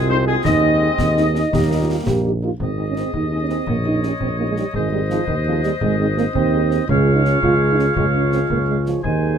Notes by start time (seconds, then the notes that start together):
Already playing: C2 G#3 C4 F4
0.09 C4 D#4 G#4 C5
0.26 C4 D#4 G#4
0.44 D#2 D#4 D#5, concert bass drum, snare
0.62 C4 D#4 G#4
0.81 C4 D#4 G#4
0.98 D#2 C4, concert bass drum, snare
1.16 C4 D#4 G#4, snare
1.33 C4 D#4 G#4, snare
1.51 D#2 G3 A#3 G4, concert bass drum, snare
1.70 A#3 D#4 G4
1.81 F4
1.87 A#3 D#4 F4 G4
2.06 A#1 G4, concert bass drum, snare
2.24 A#3 D#4 G4
2.43 A#3 D#4 F4 G4
2.60 G#1 C4 G#4 D#5, concert bass drum
2.77 C4 D#4 G#4 D#5
2.88 C#4
2.96 C4 D#4 G#4 D#5, snare
3.14 D#2 D#4, concert bass drum
3.31 C4 D#4 G#4 D#5
3.41 C#4
3.48 C4 D#4 G#4 D#5, snare
3.66 A#1 A#3 C#5, concert bass drum
3.83 C#4 D#4 G4 D#5
4.02 C#4 D#4 G4 D#5, snare
4.20 A#1 C4, concert bass drum
4.39 A#3 C#4 D#4 G4 D#5
4.49 G#3
4.56 G3 C#4 D#4 G4 D#5, snare
4.74 G#1 G#3 C5 D#5, concert bass drum
4.92 G3 C4 D#4 G#4 D#5
5.10 F3 C4 D#4 G#4 D#5, snare
5.27 D#2 D#3, concert bass drum
5.46 F3 C4 D#4 G#4 D#5
5.63 G3 C4 D#4 G#4 D#5, snare
5.81 G#1 G#3, concert bass drum
5.99 G#3 C4 D#4 G#4 D#5
6.16 A#3 C4 D#4 G#4 D#5, snare
6.34 D#2 C4, concert bass drum
6.52 C4 D#4 G#4 D#5
6.71 C4 D#4 G#4 D#5, snare
6.88 C#2 G#3 C#4 F4 G#4 C#5 F5, concert bass drum
7.15 D#4
7.24 C#4, snare
7.41 C#2 G#3 F4 G#4 C#5, concert bass drum
7.71 D#4
7.78 C#4, snare
7.95 C#2 G#3 F4 G#4 C#5, concert bass drum
8.15 C#4
8.31 C4, snare
8.50 C#2 A#3, concert bass drum
8.68 G#3
8.86 F3, snare
9.03 D#2 D#3 G#3 D#4 G#4 C5 G#5, concert bass drum